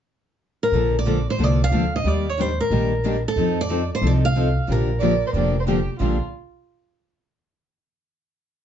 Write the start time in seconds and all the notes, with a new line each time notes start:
0.63 A#4
0.72 A#1 D3 F3 A#3 D4 A4
0.99 D5
1.06 D3 F3 A#3 D4 A4
1.30 C5
1.38 C2 D3 F3 A#3 D4 A4
1.44 D5
1.64 F5
1.71 D2 D3 F3 A#3 D4 A4
1.96 D#5
2.04 D#2 D#3 G3 A#3 D4 G4 D5
2.29 C#5
2.39 D#3 G3 A#3 D4 G4 C5
2.60 A#4
2.70 A#1 D#3 G3 A#3 D4 G4
3.05 D#3 G3 A#3 D4 G4
3.28 A4
3.36 F2 F3 C4 D#4 A4
3.61 D5
3.70 F3 C4 D#4 A4
3.95 C5
4.01 C2 F3 C4 D#4 A4
4.07 D5
4.25 F5
4.36 F3 C4 D#4 A4
4.68 A#1 D3 F3 A#3 D4 G4 A#4
5.00 D3 F3 A#3 D4 G4 D5
5.27 C5
5.33 F1 D3 F3 A#3 D4 G4 D5
5.60 C5
5.67 D3 F3 A#3 D4 G4
5.99 A#1 A#2 D3 F3 A#3 D4 F4 G4